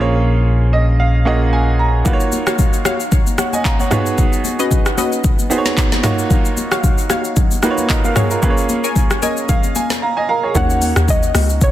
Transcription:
Already playing: A#1 A#3 C#4 F4 G#4
0.01 C#5
0.73 D#5
1.00 F5
1.25 A#3 C#4 F4 G#4 D#5 F#5
1.53 G#5
1.79 A#5
2.05 A#3 D#4 F4 F#4 B4, kick, low conga, shaker
2.13 C#5
2.20 shaker
2.32 high conga, shaker
2.47 F#4 C#5 F5, cross-stick, shaker
2.58 kick, low conga, shaker
2.73 shaker
2.85 F#4 C#5 F5, cross-stick, high conga, shaker
3.00 shaker
3.12 kick, low conga, shaker
3.27 high conga, shaker
3.38 C#5 F#5, cross-stick, high conga, shaker
3.53 D#5 G#5, high conga, shaker
3.65 F5, kick, clap, shaker
3.79 C#5 F#5, high conga, shaker
3.90 B3 D#4 F4 G#4 C#5, cross-stick, mid tom, high conga, low conga, shaker
3.98 F#4
4.06 shaker
4.18 kick, low conga, shaker
4.33 shaker
4.45 high conga, shaker
4.59 C#4 F#4 B4 D#5, shaker
4.70 kick, low conga, shaker
4.86 cross-stick, shaker
4.98 C#4 F#4 B4 D#5, high conga, shaker
5.12 shaker
5.24 kick, low conga, shaker
5.39 high conga, shaker
5.50 B3 D#4 F#4 G#4 C5, high conga, shaker
5.58 C#5
5.65 snare, high conga, shaker
5.77 kick, clap, shaker
5.92 snare, high conga, shaker
6.03 A#3 D#4 F4 F#4 C#5, cross-stick, snare, mid tom, high conga, low conga, shaker
6.19 shaker
6.30 kick, low conga, shaker
6.45 shaker
6.57 high conga, shaker
6.71 F#4 C#5 F5, cross-stick, shaker
6.83 kick, low conga, shaker
6.98 shaker
7.10 F#4 C#5 F5, cross-stick, high conga, shaker
7.25 shaker
7.36 kick, low conga, shaker
7.51 high conga, shaker
7.62 A#3 D#4 F4 F#4 B4, cross-stick, high conga, shaker
7.71 C#5
7.78 high conga, shaker
7.90 A#4 D#5, kick, clap, shaker
8.04 A#4 F5, high conga, shaker
8.16 F#4 G#4 C#5 F5, cross-stick, mid tom, high conga, low conga, shaker
8.31 F4 A#4, shaker
8.42 A#3 C#4 F4 G#4 B4, kick, low conga, shaker
8.50 C#5
8.57 shaker
8.69 high conga, shaker
8.84 A#4 C#5 G#5, shaker
8.95 kick, low conga, shaker
9.10 cross-stick, shaker
9.22 A#4 C#5 D#5 G#5, high conga, shaker
9.37 shaker
9.49 F5, kick, low conga, shaker
9.64 high conga, shaker
9.75 G#5, high conga, shaker
9.90 snare, high conga, shaker
10.02 F5 A#5
10.17 D#5 G#5
10.29 A#4 F5 A#5
10.43 G#4 C#5
10.54 D#2 A#3 C#4 D#4 F#4 C#5 F#5, kick, low conga, shaker
10.70 shaker
10.82 open hi-hat, high conga, shaker
10.96 D#2, cross-stick, shaker
11.08 D#5, kick, low conga, shaker
11.23 shaker
11.35 C#2, cross-stick, open hi-hat, high conga, shaker
11.49 shaker
11.61 C#5, kick, shaker

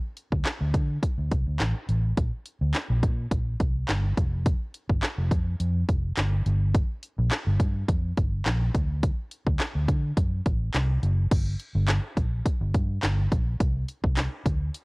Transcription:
0.17 closed hi-hat
0.32 D2, kick
0.46 snare, clap, closed hi-hat
0.61 D2
0.74 D3, kick, closed hi-hat
1.03 kick, closed hi-hat
1.18 D2
1.32 C2, kick, closed hi-hat
1.47 D2
1.60 A1, snare, clap, closed hi-hat
1.89 A1, closed hi-hat
2.17 A#1, kick, closed hi-hat
2.45 closed hi-hat
2.61 D2
2.74 snare, clap, closed hi-hat
2.90 A#1
3.03 A#2, kick, closed hi-hat
3.31 A#1, kick, closed hi-hat
3.60 C2, kick, closed hi-hat
3.89 G1, snare, clap, closed hi-hat
4.17 F1, kick, closed hi-hat
4.46 kick, closed hi-hat
4.74 closed hi-hat
4.89 G1, kick
5.03 snare, clap, closed hi-hat
5.18 F1
5.31 F2, kick, closed hi-hat
5.60 F2, closed hi-hat
5.89 F1, kick, closed hi-hat
6.17 G1, snare, clap, closed hi-hat
6.46 G1, closed hi-hat
6.74 kick, closed hi-hat
7.03 closed hi-hat
7.18 A#1
7.31 snare, clap, closed hi-hat
7.47 G1
7.60 G2, kick, closed hi-hat
7.88 F2, kick, closed hi-hat
8.17 G1, kick, closed hi-hat
8.46 A#1, snare, clap, closed hi-hat
8.74 D2, kick, closed hi-hat
9.03 kick, closed hi-hat
9.31 closed hi-hat
9.47 D2, kick
9.60 snare, clap, closed hi-hat
9.75 D2
9.88 D3, kick, closed hi-hat
10.17 F#2, kick, closed hi-hat
10.46 A1, kick, closed hi-hat
10.74 C2, snare, clap, closed hi-hat
11.03 F#1, closed hi-hat
11.32 G1, kick, closed hi-hat, crash
11.60 closed hi-hat
11.75 G1
11.89 snare, clap, closed hi-hat
12.17 A#1, kick, closed hi-hat
12.46 kick, closed hi-hat
12.61 G1
12.74 G2, kick, closed hi-hat
13.03 G1, snare, clap, closed hi-hat
13.32 A#1, kick, closed hi-hat
13.60 C2, kick, closed hi-hat
13.88 closed hi-hat
14.04 C2, kick
14.17 snare, clap, closed hi-hat
14.46 D2, kick, closed hi-hat
14.74 closed hi-hat

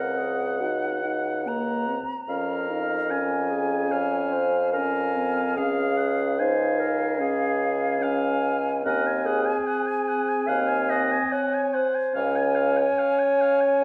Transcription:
Already playing: C#2 C4 A#4 F#5
0.18 G#4
0.60 D#4 F#4
1.04 D#4
1.46 A#3 F#5 A#5
1.88 C4
2.29 F2 C#4 A#4 F5
2.71 D#4
3.10 C#4 G#5
3.50 G#4
3.91 C#5 F5
4.32 C5
4.72 C#4 A#4 F5 G#5
5.15 C4
5.56 C#2 C#4 G#4 F5
5.97 F#5
6.39 D#4 C5 F5 G#5
6.80 A#4
7.20 C#4 G#4 G#5
8.01 C#4 F5 G#5
8.84 D#2 C4 A#4 F#5 G#5
9.07 G#5
9.26 G#4 F#5
9.46 G#5
9.67 F#5
9.87 G#5
10.09 F#5
10.29 G#5
10.48 D#2 F5 F#5
10.68 G#5
10.89 D#5 F#5
11.12 G#5
11.32 C#5 F#5
11.54 G#5
11.74 C5 F#5
11.95 G#5
12.15 C#2 C#4 C#5 F5 G#5
12.36 G#5
12.55 F5
12.77 G#5
12.99 F5
13.19 G#5
13.41 F5
13.61 G#5

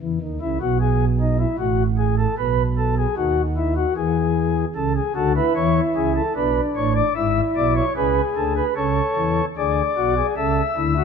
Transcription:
0.01 E2 E3
0.21 D#2 D#3
0.41 C#2 C#3 E4
0.61 B1 B2 F#4
0.80 G#4
1.20 D#4
1.39 E4
1.58 A1 A2 F#4
1.98 G#4
2.18 A4
2.38 B1 B2 B4
2.78 A4
2.98 G#4
3.17 D#2 D#3 F#4
3.57 E4
3.77 F#4
3.96 E2 E3 G#4
4.75 C#2 C#3 A4
4.96 G#4
5.15 D2 D3 F#4 A4
5.36 E4 B4
5.55 E2 E3 C#5
5.95 C#2 C#3 G#4
6.16 A4
6.35 B1 B2 D4 B4
6.76 A1 A2 C#5
6.95 D5
7.15 G#1 G#2 E4 E5
7.56 B1 B2 D5
7.75 C#5
7.96 C#2 C#3 G#4 B4
8.36 D2 D3 A4
8.57 B4
8.76 C#2 C#3 A4 C#5
9.17 E2 E3
9.57 D2 D3 G#4 D5
9.97 B1 B2 F#4
10.17 G#4
10.37 C#2 C#3 A4 E5
10.77 D2 D3 E4
10.98 F#4

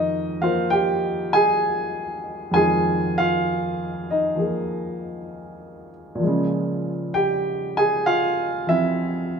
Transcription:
Already playing: F2 D#3 G#3 D#4 F4 D#5
0.41 F3 A#3 F4 C5 F5
0.70 G4 G5
1.33 G#4 G#5
2.51 F2 D#3 G#3 G#5
2.56 F4 G#4
3.18 F4 F5
4.11 D#4 D#5
4.36 F3 A#3 G#4
6.15 A#2 F3
6.23 C#3 G#3
7.14 G4 G5
7.77 G#4 G#5
8.06 F4 F5
8.67 F3 C4 E4 E5

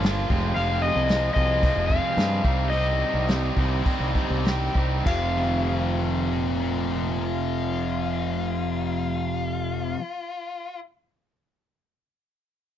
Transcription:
Already playing: G1 A#2 F3 A#3 D4
0.03 F3 A#3 D4 F4, snare, open hi-hat
0.30 F1 F2 C3 F3 G#3 C4 F4, kick
0.56 F1 F2 C3 F3 G#3 C4 F4 F5, open hi-hat
0.82 F3 G#3 C4 F4 D#5
0.96 C2
1.09 F2 C3 F3 G#3 C4 F4, snare, open hi-hat
1.34 C2 F3 G#3 C4 F4 D#5, kick
1.63 F2 C3 F3 G#3 C4 F4, kick, open hi-hat
1.76 F1
1.88 F3 G#3 C4 F5, kick
2.17 G2 F3 G#3 C4 F4, snare, open hi-hat
2.44 C2 C3 G3 C4 D#4 G4, kick
2.70 C3 G3 C4 D#4 D#5, open hi-hat
2.74 G4
3.00 C4 D#4 G4
3.14 C2
3.28 C3 G3 C4 D#4 G4, snare, open hi-hat
3.57 C2 G3 C4 D#4 G4 A#4, kick
3.85 C3 G3 C4 D#4 G4 A#4, kick, open hi-hat
4.00 C2
4.15 G3 C4 D#4 G4 A#4, kick
4.30 C2
4.44 G3 C4 D#4 G4, snare, open hi-hat
4.74 C2 G3 C4 D#4 G4, kick
5.03 F1 F2 C3 F5, kick, crash
5.08 F3
5.37 C4 G#4
5.69 C4 G#4
5.99 C4 G#4
6.30 F4 A#4
6.61 F4 A#4
6.91 F4 A#4
7.25 F4

